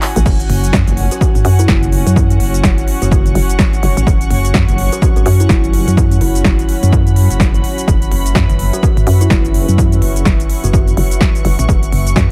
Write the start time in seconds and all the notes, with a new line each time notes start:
Already playing: C#4 F#4 F#5 G#5
0.02 clap, open hi-hat
0.16 A1, closed hi-hat, cabasa
0.26 F#1 F#3 C#4 C#5 F#5, kick, crash, cabasa
0.40 closed hi-hat, cabasa
0.49 F#1, open hi-hat
0.64 closed hi-hat, cabasa
0.73 F#2, kick, snare, cabasa
0.88 F#1, closed hi-hat, cabasa
0.97 open hi-hat
1.11 F#4, closed hi-hat, cabasa
1.21 F#4, kick, cabasa
1.35 G#1, closed hi-hat, cabasa
1.45 F#2, open hi-hat
1.59 E4, closed hi-hat, cabasa
1.68 F#1, kick, snare, cabasa
1.83 closed hi-hat, cabasa
1.92 open hi-hat
2.07 F#2, closed hi-hat, cabasa
2.16 kick, cabasa
2.30 closed hi-hat, cabasa
2.40 F#1 C#6, open hi-hat
2.54 closed hi-hat, cabasa
2.64 F#1, kick, snare, cabasa
2.78 closed hi-hat, cabasa
2.88 open hi-hat
3.02 F#1 F#4, closed hi-hat, cabasa
3.11 F#4, kick, cabasa
3.26 closed hi-hat, cabasa
3.35 F#1, open hi-hat
3.49 closed hi-hat, cabasa
3.59 kick, snare, cabasa
3.73 closed hi-hat, cabasa
3.83 F#1, open hi-hat
3.97 A1, closed hi-hat, cabasa
4.07 F#1, kick, cabasa
4.21 closed hi-hat, cabasa
4.30 F#1, open hi-hat
4.45 closed hi-hat, cabasa
4.54 F#2, kick, snare, cabasa
4.69 F#1, closed hi-hat, cabasa
4.78 open hi-hat
4.92 F#4, closed hi-hat, cabasa
5.02 F#4, kick, cabasa
5.16 G#1 F#4, closed hi-hat, cabasa
5.26 F#2 F#4, open hi-hat
5.40 E4, closed hi-hat, cabasa
5.49 F#1 E4, kick, snare, cabasa
5.64 closed hi-hat, cabasa
5.73 open hi-hat
5.88 F#2, closed hi-hat, cabasa
5.97 kick, cabasa
6.11 closed hi-hat, cabasa
6.21 F#1 E4 B5, open hi-hat
6.35 closed hi-hat, cabasa
6.44 F#1, kick, snare, cabasa
6.59 closed hi-hat, cabasa
6.69 open hi-hat
6.83 F#2, closed hi-hat, cabasa
6.93 kick, cabasa
7.07 closed hi-hat, cabasa
7.16 open hi-hat
7.30 F#1, closed hi-hat, cabasa
7.40 kick, snare, cabasa
7.54 closed hi-hat, cabasa
7.64 open hi-hat
7.78 closed hi-hat, cabasa
7.88 F#1 B4 E5, kick, cabasa
8.02 closed hi-hat, cabasa
8.12 F#1, open hi-hat
8.26 closed hi-hat, cabasa
8.35 F#2, kick, snare, cabasa
8.50 F#1, closed hi-hat, cabasa
8.59 open hi-hat
8.73 F#4, closed hi-hat, cabasa
8.83 F#4, kick, cabasa
8.97 G#1, closed hi-hat, cabasa
9.07 F#2, open hi-hat
9.21 E4, closed hi-hat, cabasa
9.30 F#1, kick, snare, cabasa
9.45 closed hi-hat, cabasa
9.54 open hi-hat
9.68 F#2, closed hi-hat, cabasa
9.78 kick, cabasa
9.92 closed hi-hat, cabasa
10.02 F#1 C#6, open hi-hat
10.16 closed hi-hat, cabasa
10.25 F#1, kick, snare, cabasa
10.40 closed hi-hat, cabasa
10.50 open hi-hat
10.64 F#1 F#4, closed hi-hat, cabasa
10.73 F#4, kick, cabasa
10.88 closed hi-hat, cabasa
10.97 F#1, open hi-hat
11.11 closed hi-hat, cabasa
11.21 kick, snare, cabasa
11.35 closed hi-hat, cabasa
11.45 F#1, open hi-hat
11.59 A1, closed hi-hat, cabasa
11.69 F#1, kick, cabasa
11.83 closed hi-hat, cabasa
11.92 F#1, open hi-hat
12.07 closed hi-hat, cabasa
12.16 F#2, kick, snare, cabasa